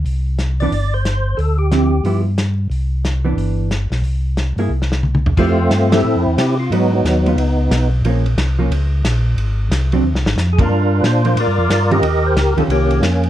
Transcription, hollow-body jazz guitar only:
0.62 0.72 E3 medium
0.62 0.72 B3 medium
0.62 0.72 D4 medium
1.72 1.91 D3 soft
1.72 1.91 F3 soft
1.72 1.91 C4 medium
1.72 1.91 E4 medium
2.05 2.24 F3 medium
2.05 2.24 B3 medium
2.05 2.24 E4 medium
3.25 3.68 E3 medium
3.25 3.69 B3 medium
3.25 3.69 D4 medium
4.59 4.70 A#3 medium
4.59 4.70 E4 medium
4.59 4.71 G#4 medium
5.38 5.57 F3 medium
5.38 5.57 A3 medium
5.38 5.57 E4 medium
5.38 5.58 G4 medium
5.92 6.03 F3 medium
5.92 6.04 A3 medium
5.92 6.04 E4 medium
5.92 6.04 G4 medium
6.72 6.90 F#3 medium
6.72 6.91 B3 medium
6.72 6.91 D#4 medium
7.27 7.37 G#3 soft
7.27 7.37 B3 medium
7.27 7.38 F4 medium
8.05 8.23 F3 medium
8.05 8.24 A#3 medium
8.05 8.24 C#4 medium
8.59 8.70 F3 medium
8.59 8.70 A#3 medium
8.59 8.70 C#4 medium
9.93 10.03 F#3 medium
9.93 10.03 C4 medium
9.93 10.04 D4 medium
10.59 10.69 F3 medium
10.59 10.70 A#3 medium
10.59 10.70 D4 medium
11.25 11.36 F3 medium
11.25 11.36 A#3 medium
11.25 11.36 D4 medium
11.91 12.02 D#3 medium
11.91 12.02 G3 medium
11.91 12.02 C#4 medium
11.91 12.02 F4 medium
12.57 13.00 D#3 medium
12.57 13.00 G3 medium
12.57 13.01 C#4 medium
12.57 13.01 F4 medium

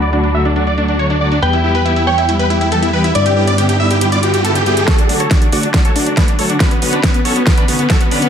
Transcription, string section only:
0.13 0.28 D3 medium
0.13 0.28 F#3 medium
0.13 0.28 A3 medium
0.13 0.28 F#4 medium
0.34 0.50 D3 medium
0.34 0.50 F#3 medium
0.34 0.50 A3 medium
0.34 0.50 F#4 medium
0.56 0.64 D3 medium
0.56 0.64 F#3 medium
0.56 0.64 A3 medium
0.56 0.64 F#4 medium
0.67 0.74 D3 medium
0.67 0.75 F#3 medium
0.67 0.75 A3 medium
0.67 0.75 F#4 medium
0.78 0.93 D3 medium
0.78 0.93 F#3 medium
0.78 0.93 A3 medium
0.78 0.93 F#4 medium
0.99 1.14 D3 medium
0.99 1.14 F#3 medium
0.99 1.14 A3 medium
0.99 1.14 F#4 medium
1.21 1.36 D3 medium
1.21 1.36 F#3 medium
1.21 1.36 A3 medium
1.21 1.36 F#4 medium
1.42 1.58 E3 medium
1.42 1.58 G3 medium
1.42 1.58 B3 medium
1.42 1.58 G4 medium
1.64 1.79 E3 medium
1.64 1.79 G3 medium
1.64 1.79 B3 medium
1.64 1.79 G4 medium
1.86 2.01 E3 medium
1.86 2.01 G3 medium
1.86 2.01 B3 medium
1.86 2.01 G4 medium
2.07 2.22 E3 medium
2.07 2.22 G3 medium
2.07 2.22 B3 medium
2.07 2.22 G4 medium
2.29 2.36 E3 medium
2.29 2.36 G3 medium
2.29 2.36 B3 medium
2.29 2.36 G4 medium
2.40 2.47 E3 medium
2.40 2.47 G3 medium
2.40 2.47 B3 medium
2.40 2.47 G4 medium
2.50 2.66 E3 medium
2.50 2.66 G3 medium
2.50 2.66 B3 medium
2.50 2.66 G4 medium
2.72 2.87 E3 medium
2.72 2.87 G3 medium
2.72 2.87 B3 medium
2.72 2.87 G4 medium
2.93 3.09 E3 medium
2.93 3.09 G3 medium
2.93 3.09 B3 medium
2.93 3.09 G4 medium
3.15 3.30 D3 medium
3.15 3.30 G3 medium
3.15 3.30 B3 medium
3.15 3.30 E4 medium
3.37 3.52 D3 medium
3.37 3.52 G3 medium
3.37 3.52 B3 medium
3.37 3.52 E4 medium
3.58 3.73 D3 medium
3.58 3.73 G3 medium
3.58 3.73 B3 medium
3.58 3.73 E4 medium
3.80 3.95 D3 medium
3.80 3.95 G3 medium
3.80 3.95 B3 medium
3.80 3.95 E4 medium
4.01 4.09 D3 medium
4.01 4.09 G3 medium
4.01 4.09 B3 medium
4.01 4.09 E4 medium
4.12 4.20 D3 medium
4.12 4.20 G3 medium
4.12 4.20 B3 medium
4.12 4.20 E4 medium
4.23 4.38 D3 medium
4.23 4.38 G3 medium
4.23 4.38 B3 medium
4.23 4.38 E4 medium
4.45 4.60 D3 medium
4.45 4.60 G3 medium
4.45 4.60 B3 medium
4.45 4.60 E4 medium
4.66 4.81 D3 medium
4.66 4.81 G3 medium
4.66 4.81 B3 medium
4.66 4.81 E4 medium
4.88 5.03 D3 medium
4.88 5.03 F#3 medium
4.88 5.03 A3 medium
4.88 5.03 F#4 medium
5.09 5.24 D3 medium
5.09 5.24 F#3 medium
5.09 5.24 A3 medium
5.09 5.24 F#4 medium
5.31 5.46 D3 medium
5.31 5.46 F#3 medium
5.31 5.46 A3 medium
5.31 5.46 F#4 medium
5.52 5.68 D3 medium
5.52 5.68 F#3 medium
5.52 5.68 A3 medium
5.52 5.68 F#4 medium
5.74 5.82 D3 medium
5.74 5.82 F#3 medium
5.74 5.82 A3 medium
5.74 5.82 F#4 medium
5.85 5.92 D3 medium
5.85 5.92 F#3 medium
5.85 5.92 A3 medium
5.85 5.92 F#4 medium
5.96 6.11 D3 medium
5.96 6.11 F#3 medium
5.96 6.11 A3 medium
5.96 6.11 F#4 medium
6.17 6.32 D3 medium
6.17 6.32 F#3 medium
6.17 6.32 A3 medium
6.17 6.32 F#4 medium
6.39 6.54 D3 medium
6.39 6.54 F#3 medium
6.39 6.54 A3 medium
6.39 6.54 F#4 medium
6.60 6.76 D3 medium
6.60 6.76 B3 medium
6.60 6.76 C#4 medium
6.60 6.75 F#4 medium
6.82 6.97 D3 medium
6.82 6.97 B3 medium
6.82 6.97 C#4 medium
6.82 6.97 F#4 medium
7.03 7.19 D3 medium
7.03 7.19 B3 medium
7.03 7.19 C#4 medium
7.03 7.19 F#4 medium
7.25 7.40 D3 medium
7.25 7.40 B3 medium
7.25 7.40 C#4 medium
7.25 7.40 F#4 medium
7.46 7.54 D3 medium
7.46 7.54 B3 medium
7.46 7.54 C#4 medium
7.46 7.54 F#4 medium
7.57 7.65 D3 medium
7.57 7.65 B3 medium
7.57 7.65 C#4 medium
7.57 7.65 F#4 medium
7.68 7.83 D3 medium
7.68 7.83 B3 medium
7.68 7.83 C#4 medium
7.68 7.83 F#4 medium
7.90 8.05 D3 medium
7.90 8.05 B3 medium
7.90 8.05 C#4 medium
7.90 8.05 F#4 medium
8.11 8.26 D3 medium
8.11 8.26 B3 medium
8.11 8.26 C#4 medium
8.11 8.27 F#4 medium

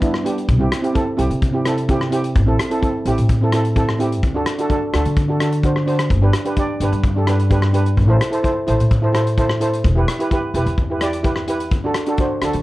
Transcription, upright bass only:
0.00 0.50 G3 medium
0.48 0.67 C2 loud
1.19 1.28 C2 medium
1.30 2.37 C3 medium
2.36 2.55 A1 loud
3.05 3.15 A1 medium
3.19 4.23 A2 medium
4.23 4.42 D2 loud
4.94 5.03 D2 medium
5.06 6.12 D3 medium
6.10 6.29 G1 loud
6.80 6.90 G1 medium
6.92 7.99 G2 medium
7.98 8.16 A1 loud
8.68 8.77 A1 medium
8.81 9.86 A2 medium
9.85 10.03 E1 loud
10.54 10.64 E1 medium
10.66 11.71 E2 loud
11.71 11.90 D2 loud
12.42 12.51 D2 medium
12.54 12.62 D3 medium

